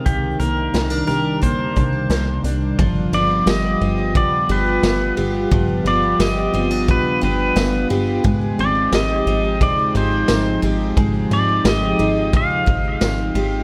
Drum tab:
RD |--------|xxxxxxxx|xxxxxxxx|xxxxxxxx|
HH |xxxxxxxx|--------|--------|--------|
TB |--------|--x---x-|--x---x-|--x---x-|
SD |--o---o-|--o---o-|--o---o-|--o---o-|
BD |o---oo--|o---o---|o---o---|o---o---|

RD |xxxxxxxx|
HH |--------|
TB |--x---x-|
SD |--o---o-|
BD |o---oo--|